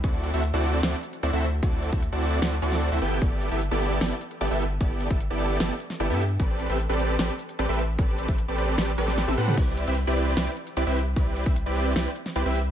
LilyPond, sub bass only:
\new Staff \with { instrumentName = "Sub bass" } { \clef bass \time 4/4 \key g \major \tempo 4 = 151 d,8. d,8 d,8. d,16 r8. d,16 d,8. | d,8. d,8 d,8. d,8 d,8. d,16 g,,8 | g,,8. g,,8 g,,8. g,,16 r8. g,,16 g,,8. | g,,8. g,,8 g,,8. g,,16 r8. g,,16 g,8. |
a,,8. a,,8 a,,8. a,,16 r8. a,,16 a,,8. | a,,8. a,,8 a,,8. a,,8 a,,8. a,,16 a,8 | c,8. c,8 c,8. c,16 r8. c,16 c,8. | c,8. c,8 c,8. c,16 r8. c,16 c,8. | }